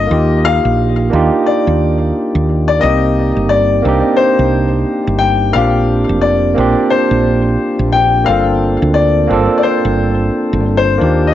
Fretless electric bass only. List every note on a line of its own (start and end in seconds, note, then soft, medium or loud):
0.11 0.59 D#2 medium
0.65 1.09 A#1 medium
1.13 1.29 D#2 medium
1.67 2.11 D#2 medium
2.35 2.79 D#2 medium
2.83 3.31 C2 medium
3.37 3.81 G1 medium
3.85 4.01 C2 medium
4.39 4.83 C2 medium
5.07 5.52 G1 medium
5.56 6.04 A#1 medium
6.09 6.54 F1 medium
6.58 6.74 A#1 medium
7.11 7.56 A#1 medium
7.79 8.24 A#1 medium
8.28 8.76 G1 medium
8.82 9.27 D2 medium
9.31 9.47 G1 medium
9.85 10.29 G1 medium
10.53 10.97 G1 medium
11.01 11.34 D#2 medium